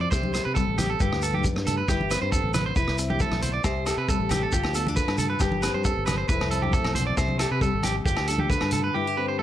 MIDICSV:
0, 0, Header, 1, 8, 480
1, 0, Start_track
1, 0, Key_signature, 0, "major"
1, 0, Tempo, 441501
1, 124, Time_signature, 4, 2, 24, 8
1, 10247, End_track
2, 0, Start_track
2, 0, Title_t, "Clean electric guitar"
2, 0, Program_c, 0, 27
2, 11, Note_on_c, 0, 74, 61
2, 115, Note_off_c, 0, 74, 0
2, 120, Note_on_c, 0, 72, 83
2, 349, Note_off_c, 0, 72, 0
2, 367, Note_on_c, 0, 72, 76
2, 483, Note_off_c, 0, 72, 0
2, 491, Note_on_c, 0, 71, 63
2, 592, Note_off_c, 0, 71, 0
2, 596, Note_on_c, 0, 69, 76
2, 826, Note_off_c, 0, 69, 0
2, 846, Note_on_c, 0, 67, 81
2, 962, Note_off_c, 0, 67, 0
2, 974, Note_on_c, 0, 69, 65
2, 1080, Note_off_c, 0, 69, 0
2, 1099, Note_on_c, 0, 67, 78
2, 1318, Note_off_c, 0, 67, 0
2, 1334, Note_on_c, 0, 69, 67
2, 1446, Note_off_c, 0, 69, 0
2, 1461, Note_on_c, 0, 67, 67
2, 1563, Note_off_c, 0, 67, 0
2, 1813, Note_on_c, 0, 69, 75
2, 1924, Note_off_c, 0, 69, 0
2, 1930, Note_on_c, 0, 71, 60
2, 2037, Note_off_c, 0, 71, 0
2, 2054, Note_on_c, 0, 67, 88
2, 2274, Note_off_c, 0, 67, 0
2, 2290, Note_on_c, 0, 71, 75
2, 2402, Note_off_c, 0, 71, 0
2, 2411, Note_on_c, 0, 72, 66
2, 2516, Note_off_c, 0, 72, 0
2, 2521, Note_on_c, 0, 69, 66
2, 2747, Note_off_c, 0, 69, 0
2, 2764, Note_on_c, 0, 71, 70
2, 2879, Note_off_c, 0, 71, 0
2, 2892, Note_on_c, 0, 72, 70
2, 2997, Note_off_c, 0, 72, 0
2, 3009, Note_on_c, 0, 71, 78
2, 3231, Note_off_c, 0, 71, 0
2, 3371, Note_on_c, 0, 67, 60
2, 3476, Note_off_c, 0, 67, 0
2, 3494, Note_on_c, 0, 69, 75
2, 3713, Note_off_c, 0, 69, 0
2, 3725, Note_on_c, 0, 72, 71
2, 3839, Note_off_c, 0, 72, 0
2, 3844, Note_on_c, 0, 74, 59
2, 3952, Note_off_c, 0, 74, 0
2, 3966, Note_on_c, 0, 72, 74
2, 4189, Note_off_c, 0, 72, 0
2, 4203, Note_on_c, 0, 69, 66
2, 4318, Note_off_c, 0, 69, 0
2, 4328, Note_on_c, 0, 71, 63
2, 4434, Note_off_c, 0, 71, 0
2, 4452, Note_on_c, 0, 69, 74
2, 4672, Note_off_c, 0, 69, 0
2, 4682, Note_on_c, 0, 67, 78
2, 4797, Note_off_c, 0, 67, 0
2, 4816, Note_on_c, 0, 69, 70
2, 4918, Note_off_c, 0, 69, 0
2, 4927, Note_on_c, 0, 67, 77
2, 5150, Note_off_c, 0, 67, 0
2, 5166, Note_on_c, 0, 69, 65
2, 5279, Note_off_c, 0, 69, 0
2, 5393, Note_on_c, 0, 71, 80
2, 5622, Note_off_c, 0, 71, 0
2, 5635, Note_on_c, 0, 69, 65
2, 5753, Note_off_c, 0, 69, 0
2, 5758, Note_on_c, 0, 71, 61
2, 5869, Note_off_c, 0, 71, 0
2, 5877, Note_on_c, 0, 67, 81
2, 6104, Note_off_c, 0, 67, 0
2, 6113, Note_on_c, 0, 71, 70
2, 6232, Note_off_c, 0, 71, 0
2, 6244, Note_on_c, 0, 72, 60
2, 6352, Note_off_c, 0, 72, 0
2, 6358, Note_on_c, 0, 69, 76
2, 6584, Note_off_c, 0, 69, 0
2, 6588, Note_on_c, 0, 71, 77
2, 6710, Note_off_c, 0, 71, 0
2, 6715, Note_on_c, 0, 72, 66
2, 6828, Note_off_c, 0, 72, 0
2, 6833, Note_on_c, 0, 71, 73
2, 7063, Note_off_c, 0, 71, 0
2, 7075, Note_on_c, 0, 69, 69
2, 7193, Note_off_c, 0, 69, 0
2, 7197, Note_on_c, 0, 67, 64
2, 7309, Note_off_c, 0, 67, 0
2, 7317, Note_on_c, 0, 69, 77
2, 7545, Note_off_c, 0, 69, 0
2, 7557, Note_on_c, 0, 72, 73
2, 7675, Note_off_c, 0, 72, 0
2, 7683, Note_on_c, 0, 74, 59
2, 7792, Note_off_c, 0, 74, 0
2, 7801, Note_on_c, 0, 72, 81
2, 8027, Note_off_c, 0, 72, 0
2, 8036, Note_on_c, 0, 69, 68
2, 8155, Note_off_c, 0, 69, 0
2, 8173, Note_on_c, 0, 71, 67
2, 8278, Note_off_c, 0, 71, 0
2, 8286, Note_on_c, 0, 69, 78
2, 8510, Note_off_c, 0, 69, 0
2, 8527, Note_on_c, 0, 67, 77
2, 8641, Note_off_c, 0, 67, 0
2, 8759, Note_on_c, 0, 67, 81
2, 8987, Note_off_c, 0, 67, 0
2, 9001, Note_on_c, 0, 69, 64
2, 9118, Note_off_c, 0, 69, 0
2, 9126, Note_on_c, 0, 67, 64
2, 9235, Note_off_c, 0, 67, 0
2, 9242, Note_on_c, 0, 71, 76
2, 9469, Note_off_c, 0, 71, 0
2, 9488, Note_on_c, 0, 69, 76
2, 9602, Note_off_c, 0, 69, 0
2, 9609, Note_on_c, 0, 71, 56
2, 9717, Note_off_c, 0, 71, 0
2, 9724, Note_on_c, 0, 67, 86
2, 9950, Note_off_c, 0, 67, 0
2, 9973, Note_on_c, 0, 71, 69
2, 10085, Note_off_c, 0, 71, 0
2, 10094, Note_on_c, 0, 72, 62
2, 10200, Note_off_c, 0, 72, 0
2, 10209, Note_on_c, 0, 69, 74
2, 10247, Note_off_c, 0, 69, 0
2, 10247, End_track
3, 0, Start_track
3, 0, Title_t, "Nylon-string guitar"
3, 0, Program_c, 1, 24
3, 0, Note_on_c, 1, 64, 59
3, 127, Note_on_c, 1, 48, 71
3, 128, Note_off_c, 1, 64, 0
3, 135, Note_on_c, 1, 67, 65
3, 367, Note_off_c, 1, 67, 0
3, 596, Note_on_c, 1, 55, 57
3, 1056, Note_off_c, 1, 48, 0
3, 1083, Note_on_c, 1, 43, 68
3, 1093, Note_on_c, 1, 65, 58
3, 1339, Note_on_c, 1, 62, 52
3, 2012, Note_off_c, 1, 43, 0
3, 2017, Note_off_c, 1, 65, 0
3, 2021, Note_off_c, 1, 62, 0
3, 2065, Note_on_c, 1, 43, 66
3, 2066, Note_on_c, 1, 64, 60
3, 2176, Note_off_c, 1, 64, 0
3, 2306, Note_on_c, 1, 60, 60
3, 2523, Note_on_c, 1, 50, 54
3, 2983, Note_off_c, 1, 43, 0
3, 2983, Note_off_c, 1, 60, 0
3, 2994, Note_off_c, 1, 55, 0
3, 3000, Note_off_c, 1, 50, 0
3, 3019, Note_on_c, 1, 64, 70
3, 3250, Note_on_c, 1, 60, 52
3, 3494, Note_on_c, 1, 45, 61
3, 3722, Note_off_c, 1, 45, 0
3, 3726, Note_on_c, 1, 47, 61
3, 3935, Note_off_c, 1, 60, 0
3, 3956, Note_off_c, 1, 47, 0
3, 3960, Note_on_c, 1, 48, 72
3, 3962, Note_off_c, 1, 64, 0
3, 3966, Note_on_c, 1, 67, 59
3, 4199, Note_off_c, 1, 67, 0
3, 4216, Note_on_c, 1, 67, 61
3, 4451, Note_on_c, 1, 55, 55
3, 4890, Note_off_c, 1, 48, 0
3, 4898, Note_off_c, 1, 67, 0
3, 4938, Note_on_c, 1, 65, 67
3, 5169, Note_on_c, 1, 59, 53
3, 5307, Note_off_c, 1, 59, 0
3, 5307, Note_on_c, 1, 62, 48
3, 5409, Note_on_c, 1, 50, 57
3, 5859, Note_off_c, 1, 65, 0
3, 5868, Note_on_c, 1, 43, 67
3, 5884, Note_on_c, 1, 67, 63
3, 5889, Note_off_c, 1, 62, 0
3, 6123, Note_on_c, 1, 60, 54
3, 6347, Note_off_c, 1, 50, 0
3, 6805, Note_off_c, 1, 43, 0
3, 6812, Note_off_c, 1, 60, 0
3, 6813, Note_off_c, 1, 67, 0
3, 6843, Note_off_c, 1, 55, 0
3, 6848, Note_on_c, 1, 41, 71
3, 6853, Note_on_c, 1, 64, 63
3, 7086, Note_on_c, 1, 60, 56
3, 7316, Note_on_c, 1, 45, 59
3, 7556, Note_off_c, 1, 45, 0
3, 7568, Note_on_c, 1, 47, 65
3, 7774, Note_off_c, 1, 60, 0
3, 7776, Note_off_c, 1, 41, 0
3, 7797, Note_off_c, 1, 47, 0
3, 7802, Note_on_c, 1, 48, 65
3, 7804, Note_off_c, 1, 64, 0
3, 7811, Note_on_c, 1, 67, 60
3, 8041, Note_off_c, 1, 67, 0
3, 8054, Note_on_c, 1, 67, 66
3, 8296, Note_on_c, 1, 55, 64
3, 8733, Note_off_c, 1, 48, 0
3, 8739, Note_off_c, 1, 67, 0
3, 8770, Note_on_c, 1, 65, 61
3, 9027, Note_on_c, 1, 62, 52
3, 9260, Note_on_c, 1, 50, 60
3, 9698, Note_off_c, 1, 65, 0
3, 9706, Note_off_c, 1, 62, 0
3, 9733, Note_on_c, 1, 43, 72
3, 9736, Note_on_c, 1, 64, 71
3, 9863, Note_off_c, 1, 64, 0
3, 9863, Note_on_c, 1, 67, 54
3, 9975, Note_on_c, 1, 60, 56
3, 10203, Note_on_c, 1, 45, 52
3, 10247, Note_off_c, 1, 43, 0
3, 10247, Note_off_c, 1, 45, 0
3, 10247, Note_off_c, 1, 50, 0
3, 10247, Note_off_c, 1, 55, 0
3, 10247, Note_off_c, 1, 60, 0
3, 10247, Note_off_c, 1, 67, 0
3, 10247, End_track
4, 0, Start_track
4, 0, Title_t, "Fingered electric bass"
4, 0, Program_c, 2, 33
4, 127, Note_on_c, 2, 36, 81
4, 420, Note_off_c, 2, 36, 0
4, 501, Note_on_c, 2, 48, 77
4, 689, Note_off_c, 2, 48, 0
4, 732, Note_on_c, 2, 33, 93
4, 1017, Note_off_c, 2, 33, 0
4, 1092, Note_on_c, 2, 31, 91
4, 1188, Note_off_c, 2, 31, 0
4, 1220, Note_on_c, 2, 38, 77
4, 1602, Note_off_c, 2, 38, 0
4, 1685, Note_on_c, 2, 43, 94
4, 1972, Note_off_c, 2, 43, 0
4, 2046, Note_on_c, 2, 31, 82
4, 2338, Note_off_c, 2, 31, 0
4, 2413, Note_on_c, 2, 43, 74
4, 2603, Note_off_c, 2, 43, 0
4, 2649, Note_on_c, 2, 33, 98
4, 2934, Note_off_c, 2, 33, 0
4, 3003, Note_on_c, 2, 29, 92
4, 3101, Note_off_c, 2, 29, 0
4, 3137, Note_on_c, 2, 36, 90
4, 3519, Note_off_c, 2, 36, 0
4, 3603, Note_on_c, 2, 35, 88
4, 3890, Note_off_c, 2, 35, 0
4, 3963, Note_on_c, 2, 36, 84
4, 4255, Note_off_c, 2, 36, 0
4, 4318, Note_on_c, 2, 48, 75
4, 4513, Note_off_c, 2, 48, 0
4, 4561, Note_on_c, 2, 33, 93
4, 4848, Note_off_c, 2, 33, 0
4, 4921, Note_on_c, 2, 31, 89
4, 5020, Note_off_c, 2, 31, 0
4, 5043, Note_on_c, 2, 38, 78
4, 5430, Note_off_c, 2, 38, 0
4, 5520, Note_on_c, 2, 43, 89
4, 5808, Note_off_c, 2, 43, 0
4, 5884, Note_on_c, 2, 31, 81
4, 6176, Note_off_c, 2, 31, 0
4, 6246, Note_on_c, 2, 43, 76
4, 6438, Note_off_c, 2, 43, 0
4, 6492, Note_on_c, 2, 31, 92
4, 6776, Note_off_c, 2, 31, 0
4, 6839, Note_on_c, 2, 29, 94
4, 6938, Note_off_c, 2, 29, 0
4, 6968, Note_on_c, 2, 36, 89
4, 7354, Note_off_c, 2, 36, 0
4, 7443, Note_on_c, 2, 35, 90
4, 7731, Note_off_c, 2, 35, 0
4, 7799, Note_on_c, 2, 36, 82
4, 8094, Note_off_c, 2, 36, 0
4, 8166, Note_on_c, 2, 48, 76
4, 8359, Note_off_c, 2, 48, 0
4, 8407, Note_on_c, 2, 32, 94
4, 8694, Note_off_c, 2, 32, 0
4, 8755, Note_on_c, 2, 31, 88
4, 8857, Note_off_c, 2, 31, 0
4, 8901, Note_on_c, 2, 38, 80
4, 9283, Note_off_c, 2, 38, 0
4, 9379, Note_on_c, 2, 43, 91
4, 9661, Note_off_c, 2, 43, 0
4, 10247, End_track
5, 0, Start_track
5, 0, Title_t, "Muted clean electric guitar strokes"
5, 3251, Note_on_c, 9, 29, 66
5, 3360, Note_off_c, 9, 29, 0
5, 5292, Note_on_c, 9, 29, 59
5, 5401, Note_off_c, 9, 29, 0
5, 10247, End_track
6, 0, Start_track
6, 0, Title_t, "Muted nylon-string guitar strokes"
6, 378, Note_on_c, 9, 29, 59
6, 487, Note_off_c, 9, 29, 0
6, 3010, Note_on_c, 9, 29, 70
6, 3119, Note_off_c, 9, 29, 0
6, 4930, Note_on_c, 9, 29, 69
6, 5038, Note_off_c, 9, 29, 0
6, 6360, Note_on_c, 9, 29, 56
6, 6469, Note_off_c, 9, 29, 0
6, 8759, Note_on_c, 9, 29, 77
6, 8868, Note_off_c, 9, 29, 0
6, 10247, End_track
7, 0, Start_track
7, 0, Title_t, "Shekere"
7, 130, Note_on_c, 9, 82, 83
7, 239, Note_off_c, 9, 82, 0
7, 370, Note_on_c, 9, 82, 59
7, 478, Note_off_c, 9, 82, 0
7, 610, Note_on_c, 9, 82, 81
7, 718, Note_off_c, 9, 82, 0
7, 857, Note_on_c, 9, 82, 66
7, 965, Note_off_c, 9, 82, 0
7, 1091, Note_on_c, 9, 82, 83
7, 1199, Note_off_c, 9, 82, 0
7, 1326, Note_on_c, 9, 82, 72
7, 1435, Note_off_c, 9, 82, 0
7, 1568, Note_on_c, 9, 82, 80
7, 1676, Note_off_c, 9, 82, 0
7, 1815, Note_on_c, 9, 82, 70
7, 1924, Note_off_c, 9, 82, 0
7, 2055, Note_on_c, 9, 82, 90
7, 2164, Note_off_c, 9, 82, 0
7, 2291, Note_on_c, 9, 82, 71
7, 2399, Note_off_c, 9, 82, 0
7, 2533, Note_on_c, 9, 82, 86
7, 2641, Note_off_c, 9, 82, 0
7, 2760, Note_on_c, 9, 82, 66
7, 2869, Note_off_c, 9, 82, 0
7, 3001, Note_on_c, 9, 82, 97
7, 3110, Note_off_c, 9, 82, 0
7, 3241, Note_on_c, 9, 82, 77
7, 3350, Note_off_c, 9, 82, 0
7, 3478, Note_on_c, 9, 82, 75
7, 3587, Note_off_c, 9, 82, 0
7, 3726, Note_on_c, 9, 82, 68
7, 3835, Note_off_c, 9, 82, 0
7, 3961, Note_on_c, 9, 82, 90
7, 4070, Note_off_c, 9, 82, 0
7, 4203, Note_on_c, 9, 82, 72
7, 4312, Note_off_c, 9, 82, 0
7, 4448, Note_on_c, 9, 82, 95
7, 4557, Note_off_c, 9, 82, 0
7, 4683, Note_on_c, 9, 82, 79
7, 4792, Note_off_c, 9, 82, 0
7, 4917, Note_on_c, 9, 82, 95
7, 5026, Note_off_c, 9, 82, 0
7, 5153, Note_on_c, 9, 82, 70
7, 5262, Note_off_c, 9, 82, 0
7, 5397, Note_on_c, 9, 82, 93
7, 5506, Note_off_c, 9, 82, 0
7, 5629, Note_on_c, 9, 82, 80
7, 5738, Note_off_c, 9, 82, 0
7, 5868, Note_on_c, 9, 82, 108
7, 5977, Note_off_c, 9, 82, 0
7, 6116, Note_on_c, 9, 82, 75
7, 6225, Note_off_c, 9, 82, 0
7, 6356, Note_on_c, 9, 82, 93
7, 6465, Note_off_c, 9, 82, 0
7, 6596, Note_on_c, 9, 82, 75
7, 6705, Note_off_c, 9, 82, 0
7, 6839, Note_on_c, 9, 82, 90
7, 6947, Note_off_c, 9, 82, 0
7, 7320, Note_on_c, 9, 82, 92
7, 7429, Note_off_c, 9, 82, 0
7, 7568, Note_on_c, 9, 82, 66
7, 7676, Note_off_c, 9, 82, 0
7, 7803, Note_on_c, 9, 82, 97
7, 7912, Note_off_c, 9, 82, 0
7, 8050, Note_on_c, 9, 82, 69
7, 8158, Note_off_c, 9, 82, 0
7, 8286, Note_on_c, 9, 82, 85
7, 8394, Note_off_c, 9, 82, 0
7, 8532, Note_on_c, 9, 82, 67
7, 8641, Note_off_c, 9, 82, 0
7, 8772, Note_on_c, 9, 82, 90
7, 8880, Note_off_c, 9, 82, 0
7, 9022, Note_on_c, 9, 82, 70
7, 9131, Note_off_c, 9, 82, 0
7, 9253, Note_on_c, 9, 82, 77
7, 9362, Note_off_c, 9, 82, 0
7, 9494, Note_on_c, 9, 82, 61
7, 9603, Note_off_c, 9, 82, 0
7, 10247, End_track
8, 0, Start_track
8, 0, Title_t, "Drums"
8, 131, Note_on_c, 9, 36, 89
8, 135, Note_on_c, 9, 37, 67
8, 240, Note_off_c, 9, 36, 0
8, 244, Note_off_c, 9, 37, 0
8, 253, Note_on_c, 9, 63, 65
8, 362, Note_off_c, 9, 63, 0
8, 375, Note_on_c, 9, 37, 65
8, 375, Note_on_c, 9, 42, 46
8, 483, Note_off_c, 9, 37, 0
8, 483, Note_off_c, 9, 42, 0
8, 613, Note_on_c, 9, 36, 89
8, 721, Note_off_c, 9, 36, 0
8, 851, Note_on_c, 9, 37, 66
8, 851, Note_on_c, 9, 42, 45
8, 855, Note_on_c, 9, 63, 59
8, 855, Note_on_c, 9, 64, 62
8, 960, Note_off_c, 9, 37, 0
8, 960, Note_off_c, 9, 42, 0
8, 964, Note_off_c, 9, 63, 0
8, 964, Note_off_c, 9, 64, 0
8, 1092, Note_on_c, 9, 36, 94
8, 1201, Note_off_c, 9, 36, 0
8, 1222, Note_on_c, 9, 37, 68
8, 1331, Note_off_c, 9, 37, 0
8, 1334, Note_on_c, 9, 42, 36
8, 1443, Note_off_c, 9, 42, 0
8, 1454, Note_on_c, 9, 63, 63
8, 1563, Note_off_c, 9, 63, 0
8, 1570, Note_on_c, 9, 36, 83
8, 1679, Note_off_c, 9, 36, 0
8, 1697, Note_on_c, 9, 37, 64
8, 1806, Note_off_c, 9, 37, 0
8, 1811, Note_on_c, 9, 42, 43
8, 1818, Note_on_c, 9, 64, 69
8, 1920, Note_off_c, 9, 42, 0
8, 1927, Note_off_c, 9, 64, 0
8, 2048, Note_on_c, 9, 36, 93
8, 2050, Note_on_c, 9, 37, 68
8, 2157, Note_off_c, 9, 36, 0
8, 2159, Note_off_c, 9, 37, 0
8, 2182, Note_on_c, 9, 63, 62
8, 2291, Note_off_c, 9, 63, 0
8, 2295, Note_on_c, 9, 37, 66
8, 2295, Note_on_c, 9, 42, 41
8, 2403, Note_off_c, 9, 37, 0
8, 2403, Note_off_c, 9, 42, 0
8, 2525, Note_on_c, 9, 36, 79
8, 2634, Note_off_c, 9, 36, 0
8, 2763, Note_on_c, 9, 37, 61
8, 2763, Note_on_c, 9, 42, 44
8, 2766, Note_on_c, 9, 63, 60
8, 2766, Note_on_c, 9, 64, 69
8, 2872, Note_off_c, 9, 37, 0
8, 2872, Note_off_c, 9, 42, 0
8, 2875, Note_off_c, 9, 63, 0
8, 2875, Note_off_c, 9, 64, 0
8, 3001, Note_on_c, 9, 36, 89
8, 3110, Note_off_c, 9, 36, 0
8, 3125, Note_on_c, 9, 37, 63
8, 3234, Note_off_c, 9, 37, 0
8, 3243, Note_on_c, 9, 42, 43
8, 3351, Note_off_c, 9, 42, 0
8, 3372, Note_on_c, 9, 63, 63
8, 3481, Note_off_c, 9, 63, 0
8, 3481, Note_on_c, 9, 36, 88
8, 3491, Note_on_c, 9, 63, 61
8, 3590, Note_off_c, 9, 36, 0
8, 3600, Note_off_c, 9, 63, 0
8, 3603, Note_on_c, 9, 37, 61
8, 3609, Note_on_c, 9, 63, 60
8, 3712, Note_off_c, 9, 37, 0
8, 3718, Note_off_c, 9, 63, 0
8, 3722, Note_on_c, 9, 42, 50
8, 3732, Note_on_c, 9, 64, 63
8, 3830, Note_off_c, 9, 42, 0
8, 3841, Note_off_c, 9, 64, 0
8, 3958, Note_on_c, 9, 68, 71
8, 3960, Note_on_c, 9, 37, 64
8, 3961, Note_on_c, 9, 36, 88
8, 4067, Note_off_c, 9, 68, 0
8, 4069, Note_off_c, 9, 37, 0
8, 4070, Note_off_c, 9, 36, 0
8, 4199, Note_on_c, 9, 68, 53
8, 4200, Note_on_c, 9, 37, 65
8, 4200, Note_on_c, 9, 42, 47
8, 4307, Note_off_c, 9, 68, 0
8, 4309, Note_off_c, 9, 37, 0
8, 4309, Note_off_c, 9, 42, 0
8, 4442, Note_on_c, 9, 36, 86
8, 4550, Note_off_c, 9, 36, 0
8, 4668, Note_on_c, 9, 68, 62
8, 4686, Note_on_c, 9, 63, 66
8, 4686, Note_on_c, 9, 64, 65
8, 4689, Note_on_c, 9, 37, 67
8, 4689, Note_on_c, 9, 42, 45
8, 4776, Note_off_c, 9, 68, 0
8, 4795, Note_off_c, 9, 63, 0
8, 4795, Note_off_c, 9, 64, 0
8, 4797, Note_off_c, 9, 37, 0
8, 4797, Note_off_c, 9, 42, 0
8, 4920, Note_on_c, 9, 36, 87
8, 5029, Note_off_c, 9, 36, 0
8, 5039, Note_on_c, 9, 68, 57
8, 5048, Note_on_c, 9, 37, 65
8, 5147, Note_off_c, 9, 68, 0
8, 5157, Note_off_c, 9, 37, 0
8, 5168, Note_on_c, 9, 42, 43
8, 5276, Note_off_c, 9, 42, 0
8, 5290, Note_on_c, 9, 63, 69
8, 5399, Note_off_c, 9, 63, 0
8, 5401, Note_on_c, 9, 36, 88
8, 5510, Note_off_c, 9, 36, 0
8, 5525, Note_on_c, 9, 68, 69
8, 5527, Note_on_c, 9, 37, 61
8, 5633, Note_off_c, 9, 68, 0
8, 5633, Note_on_c, 9, 64, 72
8, 5635, Note_off_c, 9, 37, 0
8, 5644, Note_on_c, 9, 42, 43
8, 5741, Note_off_c, 9, 64, 0
8, 5752, Note_off_c, 9, 42, 0
8, 5874, Note_on_c, 9, 68, 60
8, 5879, Note_on_c, 9, 36, 86
8, 5881, Note_on_c, 9, 37, 71
8, 5982, Note_off_c, 9, 68, 0
8, 5988, Note_off_c, 9, 36, 0
8, 5990, Note_off_c, 9, 37, 0
8, 5998, Note_on_c, 9, 63, 74
8, 6107, Note_off_c, 9, 63, 0
8, 6120, Note_on_c, 9, 68, 61
8, 6123, Note_on_c, 9, 37, 69
8, 6123, Note_on_c, 9, 42, 43
8, 6228, Note_off_c, 9, 68, 0
8, 6232, Note_off_c, 9, 37, 0
8, 6232, Note_off_c, 9, 42, 0
8, 6360, Note_on_c, 9, 36, 85
8, 6468, Note_off_c, 9, 36, 0
8, 6603, Note_on_c, 9, 37, 71
8, 6603, Note_on_c, 9, 42, 47
8, 6603, Note_on_c, 9, 63, 58
8, 6603, Note_on_c, 9, 64, 60
8, 6607, Note_on_c, 9, 68, 59
8, 6711, Note_off_c, 9, 63, 0
8, 6711, Note_off_c, 9, 64, 0
8, 6712, Note_off_c, 9, 37, 0
8, 6712, Note_off_c, 9, 42, 0
8, 6716, Note_off_c, 9, 68, 0
8, 6839, Note_on_c, 9, 36, 96
8, 6947, Note_off_c, 9, 36, 0
8, 6969, Note_on_c, 9, 37, 64
8, 6971, Note_on_c, 9, 68, 64
8, 7078, Note_off_c, 9, 37, 0
8, 7079, Note_on_c, 9, 42, 43
8, 7080, Note_off_c, 9, 68, 0
8, 7188, Note_off_c, 9, 42, 0
8, 7212, Note_on_c, 9, 63, 59
8, 7318, Note_on_c, 9, 36, 88
8, 7321, Note_off_c, 9, 63, 0
8, 7427, Note_off_c, 9, 36, 0
8, 7442, Note_on_c, 9, 68, 67
8, 7447, Note_on_c, 9, 37, 57
8, 7550, Note_off_c, 9, 68, 0
8, 7555, Note_off_c, 9, 37, 0
8, 7557, Note_on_c, 9, 64, 62
8, 7562, Note_on_c, 9, 42, 53
8, 7666, Note_off_c, 9, 64, 0
8, 7671, Note_off_c, 9, 42, 0
8, 7799, Note_on_c, 9, 36, 81
8, 7802, Note_on_c, 9, 37, 69
8, 7803, Note_on_c, 9, 68, 66
8, 7907, Note_off_c, 9, 36, 0
8, 7911, Note_off_c, 9, 37, 0
8, 7911, Note_off_c, 9, 68, 0
8, 7919, Note_on_c, 9, 63, 57
8, 8027, Note_off_c, 9, 63, 0
8, 8036, Note_on_c, 9, 37, 64
8, 8036, Note_on_c, 9, 42, 51
8, 8042, Note_on_c, 9, 68, 60
8, 8145, Note_off_c, 9, 37, 0
8, 8145, Note_off_c, 9, 42, 0
8, 8151, Note_off_c, 9, 68, 0
8, 8277, Note_on_c, 9, 36, 86
8, 8385, Note_off_c, 9, 36, 0
8, 8509, Note_on_c, 9, 63, 51
8, 8515, Note_on_c, 9, 68, 60
8, 8517, Note_on_c, 9, 37, 62
8, 8517, Note_on_c, 9, 42, 52
8, 8617, Note_off_c, 9, 63, 0
8, 8623, Note_off_c, 9, 68, 0
8, 8625, Note_off_c, 9, 37, 0
8, 8625, Note_off_c, 9, 42, 0
8, 8758, Note_on_c, 9, 36, 87
8, 8867, Note_off_c, 9, 36, 0
8, 8877, Note_on_c, 9, 37, 60
8, 8878, Note_on_c, 9, 68, 68
8, 8986, Note_off_c, 9, 37, 0
8, 8986, Note_off_c, 9, 68, 0
8, 8997, Note_on_c, 9, 42, 45
8, 9105, Note_off_c, 9, 42, 0
8, 9115, Note_on_c, 9, 63, 66
8, 9224, Note_off_c, 9, 63, 0
8, 9237, Note_on_c, 9, 36, 78
8, 9346, Note_off_c, 9, 36, 0
8, 9357, Note_on_c, 9, 37, 65
8, 9366, Note_on_c, 9, 68, 62
8, 9465, Note_off_c, 9, 37, 0
8, 9468, Note_on_c, 9, 42, 44
8, 9475, Note_off_c, 9, 68, 0
8, 9484, Note_on_c, 9, 64, 61
8, 9577, Note_off_c, 9, 42, 0
8, 9593, Note_off_c, 9, 64, 0
8, 10247, End_track
0, 0, End_of_file